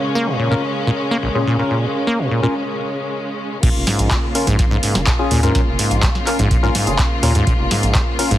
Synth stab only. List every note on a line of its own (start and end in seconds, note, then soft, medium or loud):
0.51 0.62 C#4 medium
0.51 0.62 F4 medium
0.51 0.62 A#4 medium
1.35 1.56 C#4 medium
1.35 1.56 F4 medium
1.35 1.56 G#4 loud
1.59 1.77 C#4 medium
1.59 1.77 F4 medium
1.59 1.77 A#4 medium
2.43 2.54 C#4 medium
2.43 2.54 F4 medium
2.43 2.54 A#4 medium
4.35 4.46 C#4 medium
4.35 4.46 F4 medium
4.35 4.46 A#4 medium
5.19 5.40 C#4 medium
5.19 5.40 F4 medium
5.19 5.40 G#4 loud
5.43 5.61 C#4 medium
5.43 5.61 F4 medium
5.43 5.61 A#4 medium
6.27 6.38 C#4 medium
6.27 6.38 F4 medium
6.27 6.38 A#4 medium
6.63 6.74 C#4 medium
6.63 6.74 F4 medium
6.63 6.74 A#4 medium
6.87 6.98 C#4 medium
6.87 6.98 F4 medium
6.87 6.98 G#4 medium
7.23 7.34 C#4 medium
7.23 7.34 F4 medium
7.23 7.34 A#4 medium
8.19 8.30 C#4 medium
8.19 8.30 F4 medium
8.19 8.30 A#4 medium